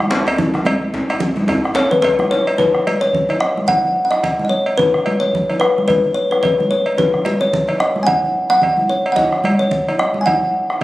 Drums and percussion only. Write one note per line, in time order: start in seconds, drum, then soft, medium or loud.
0.00 bombo rim medium
0.10 djembe slap medium
0.10 djembe slap loud
0.27 bombo rim soft
0.27 cowbell medium
0.27 djembe tone medium
0.38 bombo low medium
0.38 djembe tone loud
0.38 djembe bass medium
0.38 low conga medium
0.54 bombo rim medium
0.54 djembe slap medium
0.54 djembe tone medium
0.65 cowbell medium
0.65 high conga medium
0.65 djembe tone loud
0.82 djembe slap soft
0.94 bombo low medium
0.94 djembe slap medium
0.94 djembe tone medium
1.09 bombo rim medium
1.09 cowbell medium
1.09 high conga soft
1.09 djembe tone medium
1.20 djembe slap soft
1.20 djembe tone medium
1.20 low conga medium
1.36 bombo rim soft
1.36 djembe slap medium
1.36 high conga medium
1.48 bombo rim soft
1.48 bombo low medium
1.48 cowbell soft
1.48 djembe tone loud
1.48 djembe bass medium
1.64 bombo rim medium
1.64 high conga soft
1.64 djembe tone medium
1.75 djembe slap loud
1.75 djembe slap medium
1.92 bombo rim soft
1.92 djembe slap soft
1.92 low conga medium
2.02 bombo low medium
2.02 cowbell medium
2.02 djembe slap medium
2.02 high conga soft
2.19 bombo rim medium
2.19 djembe slap soft
2.19 high conga medium
2.19 djembe tone medium
2.31 bombo rim soft
2.31 djembe slap medium
2.47 cowbell medium
2.47 high conga soft
2.58 bombo low medium
2.58 djembe slap medium
2.58 djembe bass medium
2.58 low conga medium
2.74 bombo rim medium
2.74 djembe tone medium
2.86 bombo rim soft
2.86 cowbell medium
2.86 high conga medium
3.01 bombo rim soft
3.13 bombo low loud
3.13 djembe slap soft
3.13 low conga medium
3.29 cowbell soft
3.29 djembe slap medium
3.29 djembe tone medium
3.41 bombo rim loud
3.56 djembe slap soft
3.56 high conga medium
3.68 bombo low loud
3.68 cowbell soft
3.68 djembe slap soft
3.68 djembe bass medium
3.68 low conga medium
3.85 djembe slap soft
3.85 djembe tone medium
3.96 high conga soft
4.12 bombo rim medium
4.12 djembe slap medium
4.23 bombo low loud
4.23 cowbell soft
4.23 djembe slap soft
4.23 low conga medium
4.39 bombo rim soft
4.39 high conga medium
4.39 djembe tone medium
4.52 djembe slap soft
4.66 cowbell soft
4.66 high conga soft
4.79 bombo low medium
4.79 djembe slap medium
4.79 low conga medium
4.79 djembe bass medium
4.94 bombo rim medium
4.94 djembe tone medium
5.06 bombo rim soft
5.06 cowbell soft
5.06 high conga medium
5.22 bombo rim soft
5.33 bombo low loud
5.33 djembe slap soft
5.33 low conga medium
5.50 cowbell soft
5.50 djembe slap medium
5.50 djembe tone medium
5.61 bombo rim medium
5.77 djembe slap soft
5.77 high conga medium
5.88 bombo low medium
5.88 cowbell soft
5.88 djembe slap soft
5.88 djembe bass medium
5.88 low conga medium
6.03 djembe slap soft
6.03 djembe tone medium
6.18 high conga soft
6.31 bombo rim medium
6.31 djembe slap medium
6.43 bombo low medium
6.43 cowbell soft
6.43 djembe slap soft
6.43 low conga medium
6.59 bombo rim soft
6.59 djembe tone medium
6.59 high conga medium
6.70 djembe slap soft
6.86 cowbell soft
6.86 high conga soft
6.98 bombo low loud
6.98 djembe slap medium
6.98 djembe bass medium
6.98 low conga medium
7.13 bombo rim medium
7.13 djembe tone medium
7.25 bombo rim soft
7.25 cowbell soft
7.25 high conga medium
7.41 bombo rim soft
7.52 bombo low medium
7.52 djembe slap soft
7.52 low conga medium
7.68 cowbell soft
7.68 djembe slap medium
7.68 djembe tone soft
7.80 bombo rim loud
7.96 djembe slap soft
7.96 high conga medium
8.08 bombo low medium
8.08 cowbell soft
8.08 djembe slap soft
8.08 low conga medium
8.08 djembe bass medium
8.24 djembe slap soft
8.24 djembe tone medium
8.35 high conga soft
8.50 bombo rim medium
8.50 djembe slap medium
8.62 bombo low medium
8.62 cowbell soft
8.62 djembe slap soft
8.62 low conga medium
8.77 bombo rim soft
8.77 high conga medium
8.77 djembe tone medium
8.91 djembe slap soft
9.05 cowbell soft
9.05 high conga soft
9.16 bombo low medium
9.16 djembe slap medium
9.16 high conga soft
9.16 low conga medium
9.16 djembe bass medium
9.32 bombo rim medium
9.32 djembe tone soft
9.44 cowbell medium
9.44 high conga medium
9.60 bombo rim soft
9.60 djembe slap soft
9.60 high conga soft
9.71 bombo low medium
9.71 high conga soft
9.71 low conga medium
9.88 bombo rim soft
9.88 cowbell soft
9.88 djembe slap medium
9.88 djembe tone medium
9.99 bombo rim medium
10.14 high conga medium
10.27 bombo low medium
10.27 cowbell soft
10.27 high conga soft
10.27 low conga medium
10.27 djembe bass medium
10.42 djembe slap soft
10.42 high conga soft
10.42 djembe tone soft
10.54 high conga soft
10.70 bombo rim medium
10.70 djembe slap soft